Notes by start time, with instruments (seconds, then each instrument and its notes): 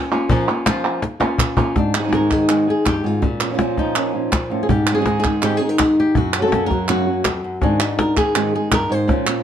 Already playing: nylon-string guitar A#3 C#4 F4
0.12 nylon-string guitar A#3 C#4 F4
0.29 nylon-string guitar A#2 F3 A#3 C#4 F4, cajon bass
0.48 nylon-string guitar A#3 C#4 F4
0.66 nylon-string guitar F3 A#3 C#4 F4, cajon slap, clap
0.85 cajon slap
1.02 muted nylon-string guitar stroke, cajon slap
1.20 nylon-string guitar A#3 C#4 F4, cajon slap
1.38 cajon bass, clap
1.57 nylon-string guitar A#3 C#4 F4, cajon bass
1.76 nylon-string guitar G#2 D4, muted nylon-string guitar stroke, cajon bass, cajon slap
1.94 nylon-string guitar G#3 C4 D#4 G#4, clap
1.98 nylon-string guitar D#3 G#3 C4 D#4 G#4
2.03 nylon-string guitar D#3 G#3 C4 D#4 G#4
2.08 nylon-string guitar D#3 G#3 C4 D#4 G#4
2.12 nylon-string guitar G#2 D#3 G#3 C4 D#4 G#4 A#4, cajon slap
2.31 nylon-string guitar D#3 G#4, cajon bass, cajon slap, clap
2.49 nylon-string guitar G#2 D#3 G#3 C4 D#4 G#4, clap
2.67 nylon-string guitar G#3 C4 D#4 G#4
2.86 nylon-string guitar G2 G4, muted nylon-string guitar stroke, cajon bass, cajon slap, clap
3.04 nylon-string guitar G#2 G#3 C4 D#4 F4 G#4, cajon slap
3.22 nylon-string guitar A#2 C#4, muted nylon-string guitar stroke, cajon bass, cajon slap
3.40 nylon-string guitar A#3 C#4 F4, clap
3.49 nylon-string guitar F3 A#3 C#4 F4
3.54 nylon-string guitar F3 A#3 C#4 F4
3.58 nylon-string guitar A#2 F3 A#3 C#4 F4, cajon slap
3.77 nylon-string guitar F3 D#4, cajon bass, cajon slap
3.95 nylon-string guitar A#2 F3 A#3 C#4 F4, clap
4.13 nylon-string guitar A#3 C#4 F4
4.32 nylon-string guitar A#2, muted nylon-string guitar stroke, cajon bass, cajon slap, clap
4.50 nylon-string guitar A2 A#3 C#4 F4
4.63 nylon-string guitar G#4
4.69 nylon-string guitar G#2 G4, muted nylon-string guitar stroke, cajon bass
4.87 clap
4.91 nylon-string guitar D#3 G#3 C4 D#4 G#4
4.96 nylon-string guitar D#3 G#3 C4 D#4 G#4
5.00 nylon-string guitar D#3 G#3 C4 D#4 G#4
5.05 nylon-string guitar G#2 D#3 G#3 C4 D#4 G#4, cajon slap
5.20 nylon-string guitar G#4
5.24 nylon-string guitar D#3 G#3 C4 D#4, cajon bass, cajon slap, clap
5.42 nylon-string guitar G#2 D#3 G#3 C4 D#4 G4 G#4, clap
5.57 nylon-string guitar D#4 G#4
5.61 nylon-string guitar G#3 C4 D#4
5.69 nylon-string guitar A#4
5.79 nylon-string guitar G#4, muted nylon-string guitar stroke, cajon bass, cajon slap, clap
6.00 nylon-string guitar G4
6.15 nylon-string guitar F#2 F#4, muted nylon-string guitar stroke, cajon bass
6.34 clap
6.38 nylon-string guitar C#3 F#3 A#3 C#4 F#4
6.42 nylon-string guitar C#3 F#3 A#3 C#4 F#4 A4
6.47 nylon-string guitar C#3 F#3 A#3 C#4 F#4
6.52 nylon-string guitar F#2 C#3 F#3 A#3 C#4 F#4, cajon slap
6.66 nylon-string guitar F#3 C#4 F#4 A#4
6.70 nylon-string guitar F#3 A#3, cajon bass, cajon slap
6.88 nylon-string guitar F#2 C#3 F#3 A#3 C#4 F#4, clap
7.07 nylon-string guitar F#3 A#3 C#4 F#4
7.25 nylon-string guitar F2, muted nylon-string guitar stroke, cajon slap, clap
7.44 nylon-string guitar F#2
7.61 nylon-string guitar G#2 D#3 G#3 C4 D4 D#4 G#4, cajon bass, cajon slap
7.80 nylon-string guitar G#3 C4 D#4 G#4, clap
7.98 nylon-string guitar A#4, muted nylon-string guitar stroke, cajon slap
8.16 nylon-string guitar D#3 G#3 C4 D#4 G#4, cajon bass, cajon slap, clap
8.35 nylon-string guitar G#2 D#3 G#3 C4 D#4 G#4, clap
8.53 nylon-string guitar G#3 C4 D#4 G#4
8.71 nylon-string guitar G2 A#4, muted nylon-string guitar stroke, cajon bass, cajon slap, clap
8.89 nylon-string guitar G#2 G#3 C4 D#4 G#4 C5, cajon slap
9.08 nylon-string guitar A#2 F3 A#3 C#4 F4, cajon bass, cajon slap
9.26 nylon-string guitar A#3 C#4 F4, clap